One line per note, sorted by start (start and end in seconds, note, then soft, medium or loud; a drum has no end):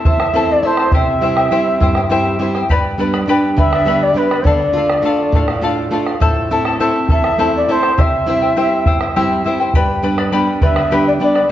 0.00 0.22 A3 soft
0.00 0.23 C4 soft
0.00 0.23 E4 soft
0.05 0.62 E2 medium
0.05 0.20 E4 medium
0.05 0.20 C5 medium
0.05 0.20 E5 medium
0.05 0.53 E5 medium
0.05 0.19 A5 medium
0.05 bombo low medium
0.20 0.34 E4 soft
0.20 0.35 C5 soft
0.20 0.35 A5 soft
0.20 bombo rim medium
0.33 0.61 A3 soft
0.33 0.62 C4 soft
0.33 0.62 E4 soft
0.33 0.64 E4 medium
0.33 0.64 A4 medium
0.33 0.65 C5 medium
0.33 0.64 E5 medium
0.33 0.64 A5 medium
0.51 0.67 D5 medium
0.62 0.86 A3 soft
0.62 0.87 C4 soft
0.62 0.87 E4 soft
0.62 0.79 E4 soft
0.62 0.79 C5 soft
0.62 0.94 C5 medium
0.62 0.79 E5 soft
0.62 bombo rim soft
0.67 0.78 A5 medium
0.77 0.93 E4 soft
0.77 0.94 C5 soft
0.77 0.93 A5 soft
0.77 bombo rim medium
0.92 1.49 C3 medium
0.92 1.23 E4 medium
0.92 1.23 G4 medium
0.92 1.22 C5 medium
0.92 1.22 E5 medium
0.92 2.07 E5 medium
0.92 1.23 G5 medium
0.92 bombo low medium
1.21 1.50 G3 soft
1.21 1.50 C4 soft
1.21 1.51 E4 medium
1.21 1.38 E4 medium
1.21 1.37 C5 medium
1.21 1.37 E5 soft
1.21 1.36 G5 medium
1.21 bombo rim soft
1.37 1.51 E4 soft
1.37 1.51 C5 soft
1.37 1.51 G5 soft
1.37 bombo rim soft
1.51 1.98 G3 soft
1.51 1.99 C4 soft
1.51 1.99 E4 soft
1.51 1.81 E4 medium
1.51 1.81 G4 medium
1.51 1.81 C5 medium
1.51 1.80 E5 medium
1.51 1.81 G5 medium
1.51 bombo rim soft
1.80 2.38 G2 medium
1.80 1.96 E4 medium
1.80 1.96 C5 medium
1.80 1.96 E5 medium
1.80 1.95 G5 medium
1.80 bombo low medium
1.95 2.10 E4 soft
1.95 2.10 C5 soft
1.95 2.11 G5 medium
1.95 bombo rim soft
2.10 2.38 G3 soft
2.10 2.38 C4 soft
2.10 2.38 E4 soft
2.10 2.40 E4 medium
2.10 2.40 G4 medium
2.10 2.40 C5 medium
2.10 2.39 E5 medium
2.10 2.41 G5 medium
2.39 2.63 G3 soft
2.39 2.63 C4 soft
2.39 2.63 E4 soft
2.39 2.55 E4 medium
2.39 2.55 C5 medium
2.39 2.55 E5 medium
2.39 2.54 G5 medium
2.39 bombo rim soft
2.55 2.70 E4 soft
2.55 2.70 C5 soft
2.55 2.70 G5 medium
2.55 bombo rim soft
2.69 3.26 G2 medium
2.69 2.99 G4 medium
2.69 2.99 B4 medium
2.69 2.99 D5 medium
2.69 2.98 G5 medium
2.69 2.99 B5 medium
2.69 bombo low medium
2.98 3.26 G3 soft
2.98 3.26 B3 soft
2.98 3.27 D4 medium
2.98 3.14 B4 medium
2.98 3.14 D5 medium
2.98 3.14 G5 medium
2.98 3.12 B5 medium
2.98 bombo rim soft
3.14 3.28 B4 soft
3.14 3.28 D5 soft
3.14 3.28 B5 medium
3.14 bombo rim soft
3.27 3.75 G3 soft
3.27 3.75 B3 soft
3.27 3.75 D4 soft
3.27 3.58 G4 medium
3.27 3.57 B4 medium
3.27 3.57 D5 medium
3.27 3.56 G5 medium
3.27 3.58 B5 medium
3.27 bombo rim soft
3.57 4.14 D3 medium
3.57 3.72 B4 medium
3.57 3.72 D5 medium
3.57 4.04 E5 medium
3.57 3.72 G5 medium
3.57 3.71 B5 medium
3.57 bombo low medium
3.73 3.86 B4 soft
3.73 3.87 D5 soft
3.73 3.87 B5 soft
3.73 bombo rim soft
3.85 4.13 G3 soft
3.85 4.14 B3 soft
3.85 4.14 D4 medium
3.85 4.16 G4 medium
3.85 4.16 B4 medium
3.85 4.16 D5 medium
3.85 4.15 G5 medium
3.85 4.16 B5 medium
4.03 4.19 D5 medium
4.14 4.39 G3 soft
4.14 4.39 B3 soft
4.14 4.39 D4 soft
4.14 4.48 B4 medium
4.14 4.31 B4 soft
4.14 4.31 D5 soft
4.14 4.31 G5 soft
4.14 4.30 B5 soft
4.14 bombo rim soft
4.31 4.46 B4 soft
4.31 4.46 D5 soft
4.31 4.46 B5 soft
4.31 bombo rim soft
4.44 5.02 D3 medium
4.44 4.75 A4 medium
4.44 5.63 D5 medium
4.44 4.75 D5 medium
4.44 4.76 F5 medium
4.44 bombo rim soft
4.44 bombo low medium
4.60 bombo rim soft
4.73 5.01 A3 soft
4.73 5.01 D4 soft
4.73 5.01 F4 medium
4.73 4.90 A4 soft
4.77 4.90 D5 medium
4.77 4.89 F5 medium
4.89 5.04 D5 soft
4.89 5.05 F5 medium
4.89 bombo rim medium
5.02 5.50 A3 soft
5.02 5.50 D4 soft
5.02 5.50 F4 soft
5.02 5.34 A4 medium
5.02 5.34 D5 medium
5.02 5.34 F5 medium
5.18 bombo rim soft
5.32 5.90 A2 medium
5.32 5.49 A4 medium
5.32 5.49 D5 medium
5.32 bombo low medium
5.36 5.48 F5 medium
5.48 5.63 D5 soft
5.48 5.63 F5 soft
5.48 bombo rim soft
5.61 5.90 A3 soft
5.61 5.90 D4 soft
5.61 5.90 F4 medium
5.61 5.91 A4 medium
5.61 5.92 D5 medium
5.61 5.92 F5 medium
5.77 bombo rim soft
5.91 6.15 A3 soft
5.91 6.15 D4 soft
5.91 6.15 F4 soft
5.91 6.07 A4 medium
5.91 6.07 D5 medium
5.91 6.06 F5 medium
6.06 6.21 D5 soft
6.06 6.21 F5 medium
6.06 bombo rim soft
6.20 6.78 A2 medium
6.20 6.50 E4 medium
6.20 6.51 A4 medium
6.20 6.51 C5 medium
6.20 6.50 E5 medium
6.20 6.51 A5 medium
6.20 bombo low medium
6.51 6.78 A3 soft
6.51 6.79 C4 soft
6.51 6.79 E4 medium
6.51 6.66 E4 medium
6.51 6.66 A4 medium
6.51 6.66 E5 medium
6.51 6.65 A5 medium
6.65 6.79 E4 soft
6.65 6.80 A4 soft
6.65 6.80 A5 medium
6.65 bombo rim soft
6.80 7.27 A3 soft
6.80 7.27 C4 soft
6.80 7.27 E4 soft
6.80 7.09 E4 medium
6.80 7.10 A4 medium
6.80 7.10 C5 medium
6.80 7.09 E5 medium
6.80 7.10 A5 medium
6.80 bombo rim soft
7.09 7.67 E2 medium
7.09 7.24 E4 medium
7.09 7.24 A4 medium
7.09 7.24 E5 medium
7.09 7.51 E5 medium
7.09 7.23 A5 medium
7.09 bombo low medium
7.24 7.38 E4 soft
7.24 7.39 A4 soft
7.24 7.39 A5 soft
7.24 bombo rim medium
7.38 7.67 A3 soft
7.38 7.67 C4 soft
7.38 7.68 E4 medium
7.38 7.68 A4 medium
7.38 7.68 C5 medium
7.38 7.67 E5 medium
7.38 7.69 A5 medium
7.56 7.72 D5 medium
7.68 7.92 A3 soft
7.68 7.92 C4 soft
7.68 7.92 E4 soft
7.68 7.83 E4 soft
7.68 7.82 A4 soft
7.68 8.02 C5 medium
7.68 7.82 E5 soft
7.68 7.82 A5 medium
7.68 bombo rim soft
7.83 7.97 E4 soft
7.83 7.98 A4 soft
7.83 7.98 A5 soft
7.83 bombo rim soft
7.98 8.55 C3 medium
7.98 8.27 E4 medium
7.98 8.27 G4 medium
7.98 8.28 C5 medium
7.98 8.27 E5 medium
7.98 9.17 E5 medium
7.98 8.28 G5 medium
7.98 bombo low medium
8.26 8.55 G3 soft
8.26 8.56 C4 soft
8.26 8.56 E4 medium
8.26 8.42 E4 medium
8.26 8.42 C5 medium
8.26 8.42 E5 soft
8.26 8.40 G5 medium
8.26 bombo rim soft
8.42 8.56 E4 soft
8.42 8.56 C5 soft
8.42 8.57 G5 medium
8.56 9.04 G3 soft
8.56 9.04 C4 soft
8.56 9.04 E4 medium
8.56 8.86 E4 medium
8.56 8.86 G4 medium
8.56 8.87 C5 medium
8.56 8.85 E5 medium
8.56 8.86 G5 medium
8.56 bombo rim soft
8.86 9.44 G2 medium
8.86 9.01 E4 medium
8.86 9.01 C5 medium
8.86 9.01 E5 medium
8.86 9.00 G5 medium
8.86 bombo low medium
9.01 9.15 E4 soft
9.01 9.15 C5 soft
9.01 9.15 G5 soft
9.01 bombo rim medium
9.16 9.44 G3 medium
9.16 9.45 C4 soft
9.16 9.45 E4 medium
9.16 9.45 G4 medium
9.16 9.45 C5 medium
9.16 9.44 E5 medium
9.16 9.45 G5 medium
9.45 9.69 G3 soft
9.45 9.69 C4 soft
9.45 9.69 E4 soft
9.45 9.60 E4 medium
9.45 9.60 C5 medium
9.45 9.60 E5 medium
9.45 9.59 G5 medium
9.45 bombo rim soft
9.60 9.75 E4 soft
9.60 9.75 C5 medium
9.60 9.74 G5 medium
9.74 10.32 G2 medium
9.74 10.04 G4 medium
9.74 10.02 B4 medium
9.74 10.02 D5 medium
9.74 10.02 G5 medium
9.74 10.03 B5 medium
9.74 bombo low medium
10.03 10.31 G3 soft
10.03 10.31 B3 soft
10.03 10.32 D4 medium
10.03 10.18 B4 medium
10.03 10.18 D5 medium
10.03 10.18 G5 medium
10.03 10.17 B5 medium
10.03 bombo rim soft
10.18 10.32 B4 soft
10.18 10.32 D5 medium
10.18 10.32 B5 medium
10.18 bombo rim medium
10.32 10.80 G3 soft
10.32 10.80 B3 soft
10.32 10.80 D4 soft
10.32 10.62 G4 medium
10.32 10.61 B4 medium
10.32 10.62 D5 medium
10.32 10.60 G5 medium
10.32 10.62 B5 medium
10.32 bombo rim soft
10.61 11.19 D3 medium
10.61 10.76 B4 medium
10.61 10.75 D5 medium
10.61 11.04 E5 medium
10.61 10.77 G5 medium
10.61 10.75 B5 medium
10.61 bombo low medium
10.76 10.91 B4 soft
10.76 10.91 D5 soft
10.76 10.91 B5 soft
10.76 bombo rim soft
10.91 11.19 G3 soft
10.91 11.19 B3 soft
10.91 11.19 D4 medium
10.91 11.21 G4 medium
10.91 11.19 B4 medium
10.91 11.20 D5 medium
10.91 11.19 G5 medium
10.91 11.21 B5 medium
11.07 11.13 D5 medium
11.20 11.44 G3 soft
11.20 11.44 B3 soft
11.20 11.44 D4 soft
11.20 11.35 B4 soft
11.20 11.34 D5 medium
11.20 11.49 D5 medium
11.20 11.35 G5 soft
11.20 11.34 B5 medium
11.20 bombo rim soft
11.35 11.50 B4 soft
11.35 11.50 D5 soft
11.35 11.49 B5 soft
11.35 bombo rim soft